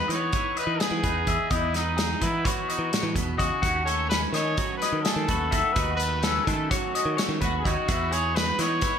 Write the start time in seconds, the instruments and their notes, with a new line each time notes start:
Already playing: clean electric guitar E2 E3 B3 D#4, trumpet B4
0.08 picked electric bass E3, trumpet C#5, clean electric guitar D#5, closed hi-hat
0.14 clean electric guitar B3
0.32 clean electric guitar E3 B4, kick, closed hi-hat
0.57 trumpet B4, clean electric guitar D#5, closed hi-hat
0.61 clean electric guitar D#4
0.67 picked electric bass E3
0.80 clean electric guitar B3 G#4, trumpet G#4, snare, closed hi-hat
0.91 picked electric bass E3
1.03 picked electric bass E2, clean electric guitar D#4 B4, kick, closed hi-hat
1.26 picked electric bass E2, clean electric guitar E2 D#4 E5, kick, closed hi-hat
1.50 clean electric guitar E2 D#4 D#5, picked electric bass E2, trumpet E4, kick, closed hi-hat
1.74 clean electric guitar B3 B4, trumpet D#4, snare, closed hi-hat
1.97 clean electric guitar D#4 G#4, snare, closed hi-hat
2.21 picked electric bass E3, clean electric guitar B3 B4, trumpet E4, kick, closed hi-hat
2.45 clean electric guitar E3 C#5, trumpet F#4, kick, closed hi-hat
2.68 clean electric guitar D#4 D#5, closed hi-hat
2.79 picked electric bass E3
2.91 clean electric guitar A2 C#5, snare, closed hi-hat
3.03 picked electric bass E3
3.14 picked electric bass E2, clean electric guitar B2 B4, kick, closed hi-hat
3.37 picked electric bass E2, clean electric guitar C#3 D#5, trumpet F#4, kick, closed hi-hat
3.62 picked electric bass D#2, clean electric guitar D#3 C#4 F#5, kick, closed hi-hat
3.85 clean electric guitar A3 A4, trumpet C#5, closed hi-hat
4.09 clean electric guitar C#4 B4, trumpet B4, snare, closed hi-hat
4.33 picked electric bass D#3, clean electric guitar A3 D#5, trumpet C#5, snare, closed hi-hat
4.57 clean electric guitar F#3 B4, kick, closed hi-hat
4.77 trumpet B4
4.82 clean electric guitar C#4 D#5, snare, closed hi-hat
4.93 picked electric bass D#3
5.02 clean electric guitar A3 G#4, trumpet A4, snare, closed hi-hat
5.16 picked electric bass D#3
5.28 picked electric bass D#2, clean electric guitar F#4 B4, kick, closed hi-hat
5.51 picked electric bass D#2, clean electric guitar D#3 F#4 E5, kick, closed hi-hat
5.73 picked electric bass D#2, clean electric guitar D#3 F#4 D#5, trumpet B4, kick, closed hi-hat
5.96 trumpet B4, clean electric guitar B4, closed hi-hat
6.02 clean electric guitar A3
6.23 clean electric guitar C#4 A4, snare, closed hi-hat
6.45 picked electric bass D#3, clean electric guitar A3 B4, trumpet A4, kick, closed hi-hat
6.70 clean electric guitar F#3 C#5, trumpet F#4, kick, closed hi-hat
6.95 clean electric guitar C#4 D#5, closed hi-hat
7.05 picked electric bass D#3
7.17 clean electric guitar A3 C#5, snare, closed hi-hat
7.29 picked electric bass D#3
7.41 picked electric bass D#2, clean electric guitar F#4 B4, kick, closed hi-hat
7.59 trumpet G#4
7.64 picked electric bass D#2, clean electric guitar D#3 C#4 D#5, trumpet F#4, kick, closed hi-hat
7.88 clean electric guitar E2 E3 B3 D#4 E5, picked electric bass E2, kick, closed hi-hat
8.12 clean electric guitar B3 G#4, trumpet C#5, closed hi-hat
8.35 clean electric guitar D#4 B4, trumpet B4, snare, closed hi-hat
8.59 picked electric bass E3, clean electric guitar B3 D#5, trumpet C#5, snare, closed hi-hat
8.81 clean electric guitar E3 B4, kick, snare, closed hi-hat